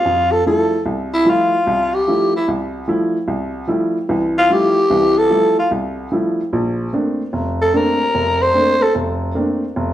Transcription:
Already playing: tenor saxophone F4
0.05 upright piano F2
0.32 tenor saxophone A4
0.46 upright piano F3 G3 A3 E4, tenor saxophone A4
0.86 upright piano C2
1.13 tenor saxophone E4
1.25 upright piano F3 G3 A3 E4
1.30 tenor saxophone F4
1.67 upright piano C2
1.95 tenor saxophone G4
2.08 upright piano F3 G3 A3 E4
2.36 tenor saxophone E4
2.48 upright piano C2
2.88 upright piano F3 G3 A3 E4
3.28 upright piano C2
3.68 upright piano F3 G3 A3 E4
4.09 upright piano C2 E3
4.38 tenor saxophone F4
4.49 upright piano F3 G3 A3 E4, tenor saxophone G4
4.90 upright piano C2 E3
5.18 tenor saxophone A4
5.30 upright piano F3 G3 A3 E4
5.59 tenor saxophone F4
5.71 upright piano C2
6.12 upright piano F3 G3 A3 E4
6.53 upright piano A#1
6.93 upright piano A3 A#3 C4 D4
7.33 upright piano F1
7.62 tenor saxophone A4
7.74 upright piano A3 A#3 C4 D4, tenor saxophone A#4
8.15 upright piano F1
8.42 tenor saxophone C5
8.54 upright piano A3 A#3 C4 D4
8.83 tenor saxophone A4
8.95 upright piano F1
9.35 upright piano A3 A#3 C4 D4
9.76 upright piano F1

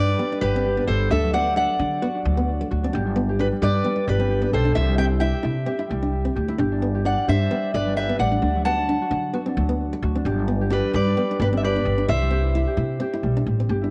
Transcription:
Already playing: upright bass G2, harp G3 E4 G4 C5, steel-string acoustic guitar B4 D5
0.09 harp D4
0.19 harp G3, nylon-string guitar B3
0.32 nylon-string guitar D4
0.41 upright bass G1, harp B3, steel-string acoustic guitar G4 B4
0.54 harp G3, nylon-string guitar C4
0.65 harp G4
0.77 nylon-string guitar B3, harp D4
0.87 upright bass G1, harp G3, steel-string acoustic guitar A4 C5
1.10 upright bass D2, harp D4, nylon-string guitar D4, steel-string acoustic guitar A4 E5
1.23 harp F#3
1.33 nylon-string guitar B3, harp F#4, steel-string acoustic guitar D5 F#5
1.46 harp D4
1.56 nylon-string guitar D4, steel-string acoustic guitar D5 F#5
1.79 upright bass D3, nylon-string guitar D4
2.02 nylon-string guitar B3, harp F#4
2.15 harp D4
2.25 upright bass D2, harp F#3
2.37 nylon-string guitar B3
2.61 nylon-string guitar A3
2.71 upright bass D2, harp F#4
2.83 nylon-string guitar C4, harp D4
2.93 upright bass G1, nylon-string guitar D4, harp G4
3.06 harp D4
3.16 nylon-string guitar B3
3.29 harp G4
3.39 nylon-string guitar D4, harp D4, steel-string acoustic guitar G4 B4
3.52 harp G3
3.62 upright bass G2, nylon-string guitar D4, harp G4, steel-string acoustic guitar B4 D5
3.75 harp D4
3.84 harp G3, nylon-string guitar B3
3.96 nylon-string guitar D4
4.07 upright bass G1, harp D4, steel-string acoustic guitar G4 B4
4.20 harp G3, nylon-string guitar C4
4.30 harp G4
4.42 nylon-string guitar B3, harp D4
4.53 upright bass B1, harp G3, steel-string acoustic guitar A4 C5
4.65 nylon-string guitar D4
4.75 upright bass C2, harp E4, steel-string acoustic guitar C5 E5, muted nylon-string guitar stroke
4.89 harp G3
4.98 nylon-string guitar C4, harp G4, steel-string acoustic guitar E5 G5
5.11 harp E4
5.20 nylon-string guitar E4, steel-string acoustic guitar E5 G5
5.34 harp G4
5.43 upright bass C3, nylon-string guitar E4
5.66 nylon-string guitar C4, harp G4
5.79 nylon-string guitar E4, harp E4
5.90 upright bass C2, harp G3
6.03 nylon-string guitar D4
6.25 nylon-string guitar C4
6.36 upright bass D2, harp G4
6.48 harp E4, muted nylon-string guitar stroke
6.58 upright bass G1, nylon-string guitar D4, harp G4
6.72 harp D4
6.82 nylon-string guitar B3
6.95 harp G4
7.05 harp D4, nylon-string guitar D4, steel-string acoustic guitar D5 F#5
7.17 harp G3
7.27 upright bass G2, nylon-string guitar D4, harp G4, steel-string acoustic guitar C5 E5
7.41 harp D4
7.51 harp G3, nylon-string guitar B3
7.74 upright bass G1, harp D4, steel-string acoustic guitar B4 D5
7.87 harp G3
7.96 harp G4, steel-string acoustic guitar B4 E5
8.09 nylon-string guitar B3, harp D4
8.19 upright bass A1, harp G3, steel-string acoustic guitar D5 F#5
8.32 nylon-string guitar D4
8.42 upright bass D2, nylon-string guitar D4, harp D4
8.55 harp F#3
8.65 nylon-string guitar B3, harp F#4, steel-string acoustic guitar F#5 A5
8.78 harp D4
8.89 nylon-string guitar D4
9.02 harp F#4
9.11 upright bass D3, nylon-string guitar D4
9.34 nylon-string guitar B3, harp F#4
9.46 nylon-string guitar C4, harp D4
9.57 upright bass D2, harp F#3
9.69 nylon-string guitar B3
9.93 muted nylon-string guitar stroke
10.03 upright bass D2, harp F#4
10.15 nylon-string guitar C4, harp D4
10.25 upright bass G1, nylon-string guitar D4, harp G4
10.39 harp D4
10.48 nylon-string guitar B3
10.61 harp G4
10.70 nylon-string guitar D4, harp D4, steel-string acoustic guitar G4 B4
10.84 harp G3
10.93 upright bass G2, nylon-string guitar D4, harp G4, steel-string acoustic guitar B4 D5
11.07 harp D4
11.17 harp G3, nylon-string guitar B3
11.31 nylon-string guitar D4
11.40 upright bass G1, harp D4, steel-string acoustic guitar G4 B4
11.52 harp G3, nylon-string guitar C4
11.57 steel-string acoustic guitar E5
11.63 harp G4, steel-string acoustic guitar B4 D5
11.75 nylon-string guitar B3, harp D4
11.85 upright bass G1, harp G3
11.98 nylon-string guitar D4
12.08 upright bass C2, nylon-string guitar E4, harp E4, steel-string acoustic guitar C5 E5
12.21 harp G3
12.31 nylon-string guitar C4, harp G4
12.44 harp E4
12.55 nylon-string guitar E4
12.67 harp G4
12.77 upright bass C3, nylon-string guitar E4
13.00 nylon-string guitar C4, harp G4
13.13 nylon-string guitar E4
13.23 upright bass B1, harp G3
13.37 nylon-string guitar D4
13.46 upright bass A1
13.60 nylon-string guitar C4
13.69 upright bass G1, harp G4
13.82 nylon-string guitar D4, harp E4

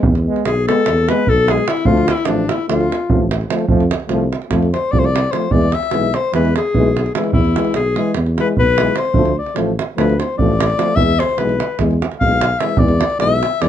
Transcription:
0.03 tuba E2, davul low
0.15 davul high
0.26 trombone G#3, euphonium B3
0.36 davul high
0.45 tuba B1, alto saxophone G#4, davul high
0.67 trombone G#3, euphonium B3, alto saxophone A4, davul high
0.86 tuba E2, davul high
0.98 davul high
1.08 trombone G#3, euphonium B3, alto saxophone B4, davul high
1.27 tuba B1, alto saxophone A4, davul low
1.48 trombone G#3, euphonium B3, alto saxophone G#4, davul high
1.58 davul high
1.68 alto saxophone E4, davul high
1.77 davul high
1.85 tuba D2, trombone F3, euphonium A3, alto saxophone F4, davul low
1.97 davul high
2.08 alto saxophone E4, davul high
2.17 davul high
2.25 tuba A1, trombone F3, euphonium A3, alto saxophone D4, davul high
2.49 alto saxophone E4, davul high
2.68 tuba D2, trombone F3, euphonium A3, alto saxophone F4, davul high
2.81 davul high
2.92 davul high
3.10 tuba A1, trombone F3, euphonium A3, davul low
3.31 davul high
3.41 davul high
3.49 trombone F3, euphonium A3, davul high
3.59 davul high
3.68 tuba F2, trombone F3, euphonium A3, davul low
3.80 davul high
3.91 davul high
4.00 davul high
4.08 tuba C2, trombone F3, euphonium A3, davul high
4.33 davul high
4.42 davul high
4.51 tuba F2, trombone F3, euphonium A3, davul high, davul low
4.62 davul high
4.74 alto saxophone C5, davul high
4.92 tuba C2, trombone F3, euphonium A3, alto saxophone D5, davul low
4.99 alto saxophone C5
5.04 alto saxophone D5, davul high
5.16 davul high
5.24 davul high
5.31 trombone F3, euphonium A3, alto saxophone C5, davul high
5.42 davul high
5.50 tuba E2, trombone E3, euphonium G#3, alto saxophone D5, davul low
5.61 davul high
5.72 alto saxophone E5, davul high
5.83 davul high
5.91 tuba B1, trombone E3, euphonium G#3, davul high
6.14 alto saxophone C5, davul high
6.33 tuba E2, trombone E3, euphonium G#3, alto saxophone B4, davul high
6.45 davul high
6.56 alto saxophone G#4, davul high
6.74 tuba B1, trombone E3, euphonium G#3, davul low
6.97 davul high
7.06 davul high
7.15 trombone E3, euphonium G#3, alto saxophone E4, davul high
7.24 davul high
7.32 tuba E2, alto saxophone E4, davul low
7.45 davul high
7.55 trombone E3, euphonium G#3, davul high
7.65 davul high
7.74 tuba B1, alto saxophone G#4, davul high
7.96 trombone E3, euphonium G#3, davul high
8.14 tuba E2, davul high
8.26 davul high
8.38 trombone E3, euphonium G#3, alto saxophone B4, davul high
8.57 tuba B1, alto saxophone B4, davul low
8.78 trombone E3, euphonium G#3, davul high
8.87 davul high
8.96 alto saxophone C5, davul high
9.05 davul high
9.13 tuba D2, trombone F3, euphonium A3, davul low
9.25 davul high
9.39 alto saxophone D5
9.46 davul high
9.55 tuba A1, trombone F3, euphonium A3, davul high
9.79 davul high
9.97 tuba D2, trombone F3, euphonium A3, alto saxophone B4, davul high
10.09 davul high
10.19 alto saxophone C5, davul high
10.38 tuba A1, trombone F3, euphonium A3, alto saxophone D5, davul low
10.60 davul high
10.70 davul high
10.78 trombone F3, euphonium A3, davul high
10.88 davul high
10.95 tuba E2, trombone E3, euphonium G#3, alto saxophone E5, davul low
11.20 alto saxophone C5, davul high
11.29 davul high
11.38 tuba B1, trombone E3, euphonium G#3, alto saxophone B4, davul high
11.49 davul high
11.60 davul high
11.79 tuba E2, trombone E3, euphonium G#3, davul high, davul low
11.91 davul high
12.02 davul high
12.12 davul high
12.20 tuba B1, trombone E3, euphonium G#3, alto saxophone F5, davul low
12.31 davul high
12.41 davul high
12.59 trombone E3, euphonium G#3, alto saxophone E5, davul high
12.69 davul high
12.77 tuba E2, trombone E3, euphonium G#3, alto saxophone D5, davul low
12.88 davul high
13.01 davul high
13.10 davul high
13.18 tuba B1, trombone E3, euphonium G#3, alto saxophone E5, davul high
13.43 davul high
13.61 tuba E2, trombone E3, euphonium G#3, alto saxophone D5, davul high

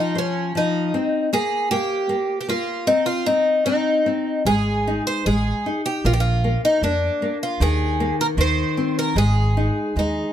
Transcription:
Already playing: nylon-string guitar F3, twelve-string acoustic guitar D#4
0.15 twelve-string acoustic guitar C#4, nylon-string guitar C5
0.55 nylon-string guitar F3, twelve-string acoustic guitar D#4
0.94 nylon-string guitar C4
1.33 nylon-string guitar A#3, twelve-string acoustic guitar G#4
1.71 nylon-string guitar A#3, twelve-string acoustic guitar G4
2.09 nylon-string guitar A#3
2.41 twelve-string acoustic guitar G4
2.48 nylon-string guitar A#3, twelve-string acoustic guitar F4
2.87 nylon-string guitar C4, twelve-string acoustic guitar D#4
3.06 twelve-string acoustic guitar F4
3.26 nylon-string guitar C4, twelve-string acoustic guitar D#4
3.66 nylon-string guitar C4, twelve-string acoustic guitar D#4
4.06 nylon-string guitar C4
4.45 upright bass G#1, nylon-string guitar G#3, twelve-string acoustic guitar G#4
4.87 nylon-string guitar D#4
5.07 twelve-string acoustic guitar C5
5.26 upright bass A1, nylon-string guitar G#3, twelve-string acoustic guitar G#4
5.66 nylon-string guitar D#4
5.86 twelve-string acoustic guitar G4
6.04 upright bass A#1, nylon-string guitar A#3, twelve-string acoustic guitar F4
6.13 twelve-string acoustic guitar G4
6.20 twelve-string acoustic guitar F4
6.44 nylon-string guitar A#3
6.65 twelve-string acoustic guitar D#4
6.82 upright bass F2, nylon-string guitar A#3, twelve-string acoustic guitar D4
7.22 nylon-string guitar A#3
7.43 twelve-string acoustic guitar F4
7.60 upright bass D#2, nylon-string guitar D#3, twelve-string acoustic guitar G#4
8.00 nylon-string guitar A#3
8.21 twelve-string acoustic guitar A#4
8.37 upright bass D#2, nylon-string guitar D#3, twelve-string acoustic guitar C5
8.77 nylon-string guitar C4
8.99 twelve-string acoustic guitar A#4
9.16 upright bass G#1, nylon-string guitar G#3, twelve-string acoustic guitar G#4
9.57 nylon-string guitar D#4
9.96 upright bass D#2, nylon-string guitar G#3, twelve-string acoustic guitar D#4

